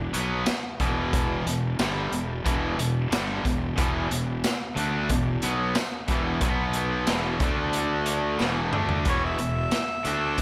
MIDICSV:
0, 0, Header, 1, 8, 480
1, 0, Start_track
1, 0, Tempo, 661521
1, 822, Time_signature, 4, 2, 24, 8
1, 7560, End_track
2, 0, Start_track
2, 0, Title_t, "Harmonica"
2, 0, Program_c, 0, 22
2, 6594, Note_on_c, 0, 73, 90
2, 6699, Note_off_c, 0, 73, 0
2, 6714, Note_on_c, 0, 76, 71
2, 7560, Note_off_c, 0, 76, 0
2, 7560, End_track
3, 0, Start_track
3, 0, Title_t, "Overdriven electric guitar"
3, 0, Program_c, 1, 29
3, 95, Note_on_c, 1, 47, 75
3, 99, Note_on_c, 1, 54, 76
3, 106, Note_on_c, 1, 59, 88
3, 331, Note_off_c, 1, 47, 0
3, 333, Note_off_c, 1, 54, 0
3, 337, Note_off_c, 1, 59, 0
3, 583, Note_on_c, 1, 40, 84
3, 587, Note_on_c, 1, 47, 88
3, 587, Note_on_c, 1, 52, 105
3, 1056, Note_off_c, 1, 40, 0
3, 1058, Note_off_c, 1, 47, 0
3, 1058, Note_off_c, 1, 52, 0
3, 1070, Note_on_c, 1, 40, 56
3, 1072, Note_on_c, 1, 47, 71
3, 1258, Note_off_c, 1, 40, 0
3, 1260, Note_off_c, 1, 47, 0
3, 1307, Note_on_c, 1, 43, 89
3, 1314, Note_on_c, 1, 50, 82
3, 1319, Note_on_c, 1, 55, 86
3, 1538, Note_off_c, 1, 43, 0
3, 1541, Note_off_c, 1, 50, 0
3, 1544, Note_off_c, 1, 55, 0
3, 1548, Note_on_c, 1, 40, 61
3, 1553, Note_on_c, 1, 47, 66
3, 1738, Note_off_c, 1, 40, 0
3, 1740, Note_off_c, 1, 47, 0
3, 1776, Note_on_c, 1, 40, 93
3, 1776, Note_on_c, 1, 47, 98
3, 1785, Note_on_c, 1, 52, 98
3, 2011, Note_off_c, 1, 40, 0
3, 2012, Note_off_c, 1, 47, 0
3, 2017, Note_off_c, 1, 52, 0
3, 2020, Note_on_c, 1, 40, 55
3, 2023, Note_on_c, 1, 47, 68
3, 2213, Note_off_c, 1, 40, 0
3, 2215, Note_off_c, 1, 47, 0
3, 2251, Note_on_c, 1, 43, 83
3, 2257, Note_on_c, 1, 50, 101
3, 2258, Note_on_c, 1, 55, 89
3, 2490, Note_off_c, 1, 43, 0
3, 2492, Note_off_c, 1, 50, 0
3, 2493, Note_off_c, 1, 55, 0
3, 2495, Note_on_c, 1, 40, 65
3, 2495, Note_on_c, 1, 47, 69
3, 2691, Note_off_c, 1, 40, 0
3, 2691, Note_off_c, 1, 47, 0
3, 2727, Note_on_c, 1, 40, 98
3, 2732, Note_on_c, 1, 47, 105
3, 2736, Note_on_c, 1, 52, 97
3, 2959, Note_off_c, 1, 40, 0
3, 2962, Note_off_c, 1, 47, 0
3, 2968, Note_on_c, 1, 40, 57
3, 2971, Note_on_c, 1, 47, 65
3, 2972, Note_off_c, 1, 52, 0
3, 3167, Note_off_c, 1, 40, 0
3, 3168, Note_off_c, 1, 47, 0
3, 3449, Note_on_c, 1, 50, 83
3, 3456, Note_on_c, 1, 57, 85
3, 3458, Note_on_c, 1, 62, 90
3, 3688, Note_off_c, 1, 50, 0
3, 3691, Note_off_c, 1, 57, 0
3, 3693, Note_off_c, 1, 62, 0
3, 3695, Note_on_c, 1, 40, 59
3, 3695, Note_on_c, 1, 47, 67
3, 3890, Note_off_c, 1, 40, 0
3, 3890, Note_off_c, 1, 47, 0
3, 3941, Note_on_c, 1, 47, 76
3, 3947, Note_on_c, 1, 54, 87
3, 3953, Note_on_c, 1, 59, 88
3, 4174, Note_off_c, 1, 47, 0
3, 4177, Note_off_c, 1, 54, 0
3, 4180, Note_off_c, 1, 59, 0
3, 4411, Note_on_c, 1, 40, 85
3, 4413, Note_on_c, 1, 47, 85
3, 4421, Note_on_c, 1, 52, 110
3, 4645, Note_off_c, 1, 47, 0
3, 4648, Note_off_c, 1, 40, 0
3, 4653, Note_off_c, 1, 52, 0
3, 4654, Note_on_c, 1, 47, 84
3, 4660, Note_on_c, 1, 54, 88
3, 4662, Note_on_c, 1, 59, 101
3, 5121, Note_off_c, 1, 47, 0
3, 5123, Note_on_c, 1, 40, 79
3, 5127, Note_off_c, 1, 54, 0
3, 5130, Note_on_c, 1, 47, 82
3, 5130, Note_on_c, 1, 52, 82
3, 5134, Note_off_c, 1, 59, 0
3, 5364, Note_off_c, 1, 40, 0
3, 5367, Note_off_c, 1, 47, 0
3, 5367, Note_off_c, 1, 52, 0
3, 5370, Note_on_c, 1, 50, 82
3, 5374, Note_on_c, 1, 57, 89
3, 5380, Note_on_c, 1, 62, 97
3, 6078, Note_on_c, 1, 40, 91
3, 6083, Note_off_c, 1, 50, 0
3, 6086, Note_on_c, 1, 47, 84
3, 6087, Note_off_c, 1, 57, 0
3, 6090, Note_on_c, 1, 52, 86
3, 6092, Note_off_c, 1, 62, 0
3, 6321, Note_off_c, 1, 40, 0
3, 6325, Note_off_c, 1, 47, 0
3, 6327, Note_off_c, 1, 52, 0
3, 6329, Note_on_c, 1, 50, 88
3, 6333, Note_on_c, 1, 57, 86
3, 6333, Note_on_c, 1, 62, 100
3, 6567, Note_off_c, 1, 50, 0
3, 6569, Note_off_c, 1, 57, 0
3, 6569, Note_off_c, 1, 62, 0
3, 6569, Note_on_c, 1, 40, 86
3, 6573, Note_on_c, 1, 47, 96
3, 6577, Note_on_c, 1, 52, 96
3, 6800, Note_off_c, 1, 40, 0
3, 6803, Note_off_c, 1, 47, 0
3, 6809, Note_on_c, 1, 40, 53
3, 6811, Note_off_c, 1, 52, 0
3, 6811, Note_on_c, 1, 47, 70
3, 7006, Note_off_c, 1, 40, 0
3, 7007, Note_off_c, 1, 47, 0
3, 7286, Note_on_c, 1, 50, 74
3, 7291, Note_on_c, 1, 57, 83
3, 7295, Note_on_c, 1, 62, 90
3, 7526, Note_off_c, 1, 50, 0
3, 7529, Note_off_c, 1, 57, 0
3, 7530, Note_off_c, 1, 62, 0
3, 7531, Note_on_c, 1, 40, 64
3, 7533, Note_on_c, 1, 47, 68
3, 7560, Note_off_c, 1, 40, 0
3, 7560, Note_off_c, 1, 47, 0
3, 7560, End_track
4, 0, Start_track
4, 0, Title_t, "Fingered electric bass"
4, 0, Program_c, 2, 33
4, 0, Note_on_c, 2, 28, 74
4, 84, Note_off_c, 2, 28, 0
4, 107, Note_on_c, 2, 35, 79
4, 328, Note_off_c, 2, 35, 0
4, 583, Note_on_c, 2, 28, 91
4, 1034, Note_off_c, 2, 28, 0
4, 1063, Note_on_c, 2, 28, 88
4, 1286, Note_off_c, 2, 28, 0
4, 1300, Note_on_c, 2, 31, 92
4, 1524, Note_off_c, 2, 31, 0
4, 1539, Note_on_c, 2, 28, 78
4, 1764, Note_off_c, 2, 28, 0
4, 1784, Note_on_c, 2, 28, 83
4, 2007, Note_off_c, 2, 28, 0
4, 2018, Note_on_c, 2, 28, 73
4, 2244, Note_off_c, 2, 28, 0
4, 2261, Note_on_c, 2, 31, 87
4, 2485, Note_off_c, 2, 31, 0
4, 2505, Note_on_c, 2, 28, 84
4, 2727, Note_off_c, 2, 28, 0
4, 2743, Note_on_c, 2, 28, 84
4, 2966, Note_off_c, 2, 28, 0
4, 2984, Note_on_c, 2, 28, 80
4, 3207, Note_off_c, 2, 28, 0
4, 3456, Note_on_c, 2, 38, 97
4, 3682, Note_off_c, 2, 38, 0
4, 3697, Note_on_c, 2, 28, 70
4, 3922, Note_off_c, 2, 28, 0
4, 3941, Note_on_c, 2, 35, 87
4, 4164, Note_off_c, 2, 35, 0
4, 4418, Note_on_c, 2, 28, 98
4, 4642, Note_off_c, 2, 28, 0
4, 4654, Note_on_c, 2, 35, 93
4, 5108, Note_off_c, 2, 35, 0
4, 5136, Note_on_c, 2, 28, 99
4, 5361, Note_off_c, 2, 28, 0
4, 5370, Note_on_c, 2, 38, 92
4, 6065, Note_off_c, 2, 38, 0
4, 6097, Note_on_c, 2, 28, 87
4, 6321, Note_off_c, 2, 28, 0
4, 6334, Note_on_c, 2, 38, 94
4, 6560, Note_off_c, 2, 38, 0
4, 6574, Note_on_c, 2, 28, 77
4, 6799, Note_off_c, 2, 28, 0
4, 6819, Note_on_c, 2, 28, 79
4, 7043, Note_off_c, 2, 28, 0
4, 7294, Note_on_c, 2, 38, 82
4, 7520, Note_off_c, 2, 38, 0
4, 7560, End_track
5, 0, Start_track
5, 0, Title_t, "Muted distorted electric guitar strokes"
5, 338, Note_on_c, 9, 29, 62
5, 411, Note_off_c, 9, 29, 0
5, 4183, Note_on_c, 9, 29, 61
5, 4256, Note_off_c, 9, 29, 0
5, 7560, End_track
6, 0, Start_track
6, 0, Title_t, "Muted fingered electric bass strokes"
6, 357, Note_on_c, 9, 29, 43
6, 430, Note_off_c, 9, 29, 0
6, 4183, Note_on_c, 9, 29, 38
6, 4255, Note_off_c, 9, 29, 0
6, 7560, End_track
7, 0, Start_track
7, 0, Title_t, "Muted overdriven electric guitar strokes"
7, 342, Note_on_c, 9, 29, 55
7, 414, Note_off_c, 9, 29, 0
7, 4177, Note_on_c, 9, 29, 56
7, 4250, Note_off_c, 9, 29, 0
7, 7560, End_track
8, 0, Start_track
8, 0, Title_t, "Drums"
8, 99, Note_on_c, 9, 42, 69
8, 172, Note_off_c, 9, 42, 0
8, 334, Note_on_c, 9, 42, 83
8, 334, Note_on_c, 9, 54, 109
8, 338, Note_on_c, 9, 38, 107
8, 344, Note_off_c, 9, 54, 0
8, 344, Note_on_c, 9, 54, 92
8, 406, Note_off_c, 9, 42, 0
8, 411, Note_off_c, 9, 38, 0
8, 417, Note_off_c, 9, 54, 0
8, 578, Note_on_c, 9, 42, 71
8, 580, Note_on_c, 9, 36, 81
8, 651, Note_off_c, 9, 42, 0
8, 653, Note_off_c, 9, 36, 0
8, 821, Note_on_c, 9, 36, 109
8, 821, Note_on_c, 9, 42, 83
8, 894, Note_off_c, 9, 36, 0
8, 894, Note_off_c, 9, 42, 0
8, 1065, Note_on_c, 9, 42, 73
8, 1137, Note_off_c, 9, 42, 0
8, 1299, Note_on_c, 9, 42, 78
8, 1299, Note_on_c, 9, 54, 103
8, 1303, Note_on_c, 9, 38, 100
8, 1304, Note_off_c, 9, 54, 0
8, 1304, Note_on_c, 9, 54, 83
8, 1371, Note_off_c, 9, 42, 0
8, 1376, Note_off_c, 9, 38, 0
8, 1377, Note_off_c, 9, 54, 0
8, 1541, Note_on_c, 9, 42, 65
8, 1614, Note_off_c, 9, 42, 0
8, 1783, Note_on_c, 9, 36, 77
8, 1783, Note_on_c, 9, 42, 90
8, 1855, Note_off_c, 9, 36, 0
8, 1855, Note_off_c, 9, 42, 0
8, 2025, Note_on_c, 9, 42, 73
8, 2097, Note_off_c, 9, 42, 0
8, 2265, Note_on_c, 9, 42, 93
8, 2265, Note_on_c, 9, 54, 112
8, 2269, Note_on_c, 9, 38, 116
8, 2338, Note_off_c, 9, 42, 0
8, 2338, Note_off_c, 9, 54, 0
8, 2342, Note_off_c, 9, 38, 0
8, 2504, Note_on_c, 9, 36, 81
8, 2505, Note_on_c, 9, 42, 75
8, 2576, Note_off_c, 9, 36, 0
8, 2577, Note_off_c, 9, 42, 0
8, 2740, Note_on_c, 9, 42, 91
8, 2742, Note_on_c, 9, 36, 101
8, 2812, Note_off_c, 9, 42, 0
8, 2814, Note_off_c, 9, 36, 0
8, 2983, Note_on_c, 9, 42, 74
8, 3056, Note_off_c, 9, 42, 0
8, 3220, Note_on_c, 9, 42, 86
8, 3220, Note_on_c, 9, 54, 100
8, 3224, Note_off_c, 9, 54, 0
8, 3224, Note_on_c, 9, 38, 94
8, 3224, Note_on_c, 9, 54, 94
8, 3293, Note_off_c, 9, 42, 0
8, 3297, Note_off_c, 9, 38, 0
8, 3297, Note_off_c, 9, 54, 0
8, 3460, Note_on_c, 9, 42, 68
8, 3533, Note_off_c, 9, 42, 0
8, 3695, Note_on_c, 9, 42, 86
8, 3699, Note_on_c, 9, 36, 71
8, 3768, Note_off_c, 9, 42, 0
8, 3772, Note_off_c, 9, 36, 0
8, 3932, Note_on_c, 9, 42, 70
8, 4005, Note_off_c, 9, 42, 0
8, 4172, Note_on_c, 9, 42, 93
8, 4172, Note_on_c, 9, 54, 116
8, 4176, Note_on_c, 9, 38, 108
8, 4184, Note_off_c, 9, 54, 0
8, 4184, Note_on_c, 9, 54, 93
8, 4244, Note_off_c, 9, 42, 0
8, 4249, Note_off_c, 9, 38, 0
8, 4256, Note_off_c, 9, 54, 0
8, 4410, Note_on_c, 9, 42, 70
8, 4415, Note_on_c, 9, 36, 85
8, 4483, Note_off_c, 9, 42, 0
8, 4488, Note_off_c, 9, 36, 0
8, 4649, Note_on_c, 9, 42, 88
8, 4653, Note_on_c, 9, 36, 101
8, 4722, Note_off_c, 9, 42, 0
8, 4726, Note_off_c, 9, 36, 0
8, 4885, Note_on_c, 9, 42, 68
8, 4958, Note_off_c, 9, 42, 0
8, 5128, Note_on_c, 9, 42, 75
8, 5128, Note_on_c, 9, 54, 102
8, 5133, Note_on_c, 9, 38, 94
8, 5140, Note_off_c, 9, 54, 0
8, 5140, Note_on_c, 9, 54, 83
8, 5201, Note_off_c, 9, 42, 0
8, 5205, Note_off_c, 9, 38, 0
8, 5212, Note_off_c, 9, 54, 0
8, 5369, Note_on_c, 9, 42, 70
8, 5371, Note_on_c, 9, 36, 104
8, 5441, Note_off_c, 9, 42, 0
8, 5444, Note_off_c, 9, 36, 0
8, 5608, Note_on_c, 9, 42, 78
8, 5681, Note_off_c, 9, 42, 0
8, 5847, Note_on_c, 9, 42, 72
8, 5919, Note_off_c, 9, 42, 0
8, 6088, Note_on_c, 9, 54, 93
8, 6093, Note_on_c, 9, 38, 57
8, 6161, Note_off_c, 9, 54, 0
8, 6166, Note_off_c, 9, 38, 0
8, 6333, Note_on_c, 9, 45, 86
8, 6405, Note_off_c, 9, 45, 0
8, 6449, Note_on_c, 9, 43, 82
8, 6521, Note_off_c, 9, 43, 0
8, 6567, Note_on_c, 9, 42, 85
8, 6572, Note_on_c, 9, 36, 101
8, 6640, Note_off_c, 9, 42, 0
8, 6644, Note_off_c, 9, 36, 0
8, 6809, Note_on_c, 9, 42, 64
8, 6881, Note_off_c, 9, 42, 0
8, 7048, Note_on_c, 9, 42, 78
8, 7048, Note_on_c, 9, 54, 98
8, 7052, Note_on_c, 9, 38, 86
8, 7121, Note_off_c, 9, 42, 0
8, 7121, Note_off_c, 9, 54, 0
8, 7125, Note_off_c, 9, 38, 0
8, 7290, Note_on_c, 9, 42, 65
8, 7363, Note_off_c, 9, 42, 0
8, 7530, Note_on_c, 9, 42, 77
8, 7533, Note_on_c, 9, 36, 76
8, 7560, Note_off_c, 9, 36, 0
8, 7560, Note_off_c, 9, 42, 0
8, 7560, End_track
0, 0, End_of_file